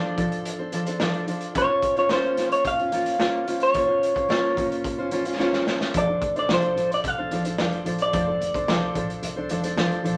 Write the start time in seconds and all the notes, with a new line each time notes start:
Already playing: F3 D4 A4 C5 D5
0.17 F3 D4 A4 C5, kick, closed hi-hat
0.32 closed hi-hat
0.45 closed hi-hat
0.59 D4 A4 C5
0.72 F3 D4 A4 C5, closed hi-hat
0.86 D4 A4 C5, closed hi-hat
1.00 F3 D4 A4 C5, snare
1.14 closed hi-hat
1.27 F3 D4 A4 C5, closed hi-hat
1.41 closed hi-hat
1.55 A#3 C#4 F4 C5 C#5, kick, closed hi-hat
1.68 C#4 F4 C5
1.82 kick, closed hi-hat
1.96 C#4 F4 C5 C#5, closed hi-hat
2.09 A#3 C#4 F4 C5, snare
2.37 A#3 C#4 F4 C5, snare, closed hi-hat
2.52 C#5, closed hi-hat
2.65 F5, kick, closed hi-hat
2.79 C#4 F4 C5, closed hi-hat
2.92 A#3 C#4 F4 C5, closed hi-hat
3.06 closed hi-hat
3.19 A#3 C#4 F4 C5, snare
3.46 A#3 C#4 F4 C5, closed hi-hat
3.60 C#5, closed hi-hat
3.74 A#3 C#4 F4 C5, kick, closed hi-hat
3.87 C#4 F4 C5
4.03 closed hi-hat
4.14 C#4 F4 C5, kick, closed hi-hat
4.29 A#3 C#4 F4 C5, snare
4.56 A#3 C#4 F4 C5, kick, closed hi-hat
4.72 closed hi-hat
4.84 kick, closed hi-hat
4.98 C#4 F4 C5
5.11 A#3 C#4 F4 C5, closed hi-hat
5.25 C#4 F4 C5, closed hi-hat
5.39 A#3 C#4 F4 C5, snare
5.53 snare
5.67 A#3 C#4 F4 C5, snare
5.81 snare
5.94 F1 F3 D4 A4 C5, kick, closed hi-hat
5.98 D5
6.08 D4 A4 C5
6.22 F1, kick, closed hi-hat
6.36 D4 A4 C5 D5, closed hi-hat
6.49 C2 F3 D4 A4 C5, snare
6.54 C5
6.62 closed hi-hat
6.76 A1 F3 D4 A4 C5, closed hi-hat
6.92 D5, closed hi-hat
7.04 C2 F5, kick, closed hi-hat
7.18 D4 A4 C5
7.31 A1 F3 D4 A4 C5, closed hi-hat
7.45 D4 A4 C5, closed hi-hat
7.58 F1 F3 D4 A4 C5, snare
7.73 closed hi-hat
7.85 A1 F3 D4 A4 C5, closed hi-hat
7.98 D5, closed hi-hat
8.13 F1 F3 D4 A4 C5, kick, closed hi-hat
8.26 D4 A4 C5
8.41 F1, closed hi-hat
8.54 D4 A4 C5, kick, closed hi-hat
8.68 C2 F3 D4 A4 C5, snare
8.95 A1 F3 D4 A4 C5, kick, closed hi-hat
9.10 closed hi-hat
9.23 C2, closed hi-hat
9.36 D4 A4 C5
9.49 F1 F3 D4 A4 C5, closed hi-hat
9.63 D4 A4 C5, closed hi-hat
9.77 F3 D4 A4 C5, snare
9.92 closed hi-hat
10.04 A#1 F3 D4 A4 C5, closed hi-hat